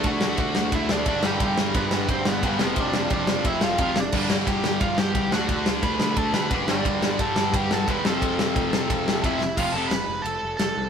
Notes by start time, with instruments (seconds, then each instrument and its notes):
Already playing: distorted electric guitar D3 A3 D4
0.04 picked electric bass D2, lead electric guitar F#4 F#5, kick, ride
0.21 picked electric bass D2, snare
0.37 picked electric bass D2, lead electric guitar F#4 F#5, kick, ride
0.55 picked electric bass D2, snare
0.72 picked electric bass D2, lead electric guitar E4 E5, kick, ride
0.89 picked electric bass D2, lead electric guitar D4 D5, snare
1.06 picked electric bass F#1, distorted electric guitar D3 A3 D4, lead electric guitar D4 D5, kick, ride
1.23 picked electric bass G1, distorted electric guitar G2 D3 G3, lead electric guitar G4 G5, snare
1.40 picked electric bass G1, kick, ride
1.57 picked electric bass G1, snare
1.74 picked electric bass G1, lead electric guitar B3 B4, kick, ride
1.91 picked electric bass G1, snare
2.08 picked electric bass G1, lead electric guitar C4 C5, kick, ride
2.25 picked electric bass G1, lead electric guitar B3 B4, snare
2.43 picked electric bass G1, distorted electric guitar G2 D3 G3, kick, ride
2.59 picked electric bass F1, distorted electric guitar F2 C3 F3, snare
2.76 picked electric bass F1, kick, ride
2.80 lead electric guitar D4 D5
2.93 picked electric bass F1, snare
3.10 picked electric bass F1, lead electric guitar D4, kick, ride
3.15 lead electric guitar D5
3.27 picked electric bass F1, snare
3.44 picked electric bass F1, lead electric guitar E4 E5, kick, ride
3.61 picked electric bass F1, lead electric guitar F4 F5, snare
3.78 picked electric bass F1, distorted electric guitar F2 C3 F3, lead electric guitar F4 F5, kick, ride
3.96 lead electric guitar D4, snare
4.00 lead electric guitar D5
4.12 picked electric bass G1, distorted electric guitar G2 D3 G3, kick, crash
4.30 picked electric bass G1, snare
4.47 picked electric bass G1, lead electric guitar G4 G5, kick, ride
4.64 picked electric bass G1, snare
4.80 picked electric bass G1, lead electric guitar F4 F5, kick, ride
4.98 picked electric bass G1, lead electric guitar G4 G5, snare
5.14 picked electric bass C2, kick, ride
5.32 picked electric bass D2, distorted electric guitar D3 A3 D4, lead electric guitar F#4 F#5, snare
5.49 picked electric bass D2, kick, ride
5.66 picked electric bass D2, snare
5.82 picked electric bass D2, lead electric guitar B4 B5, kick, ride
5.99 picked electric bass D2, snare
6.16 picked electric bass D2, lead electric guitar A4 A5, kick, ride
6.33 picked electric bass D2, lead electric guitar B4 B5, snare
6.51 picked electric bass F#1, distorted electric guitar D3 A3 D4, kick, ride
6.67 picked electric bass G1, distorted electric guitar G2 D3 G3, lead electric guitar D4 D5, snare
6.85 picked electric bass G1, kick, ride
7.02 picked electric bass G1, snare
7.19 picked electric bass G1, lead electric guitar A4 A5, kick, ride
7.36 picked electric bass G1, snare
7.53 picked electric bass G1, lead electric guitar G4 G5, kick, ride
7.70 picked electric bass G1, lead electric guitar A4 A5, snare
7.88 picked electric bass E1, distorted electric guitar G2 D3 G3, lead electric guitar B4 B5, kick, ride
8.05 picked electric bass F1, distorted electric guitar F2 C3 F3, lead electric guitar A4 A5, snare
8.22 picked electric bass F1, kick, ride
8.39 picked electric bass F1, snare
8.56 picked electric bass F1, kick, ride
8.73 picked electric bass F1, snare
8.90 picked electric bass F1, kick, ride
9.07 picked electric bass F1, snare
9.23 picked electric bass F1, distorted electric guitar F2 C3 F3, lead electric guitar E4 E5, kick, ride
9.41 snare
9.57 picked electric bass F1, distorted electric guitar F2 C3 F3, lead electric guitar F4 F5, kick, crash
9.72 picked electric bass F1, distorted electric guitar F2 C3 F3, lead electric guitar A4 A5
9.88 picked electric bass F1, lead electric guitar B4 B5, snare, ride
10.08 picked electric bass F1
10.22 picked electric bass F1, lead electric guitar A5, ride
10.27 lead electric guitar A4
10.43 picked electric bass F1
10.57 picked electric bass F1, lead electric guitar A4 A5, snare, ride
10.77 picked electric bass C2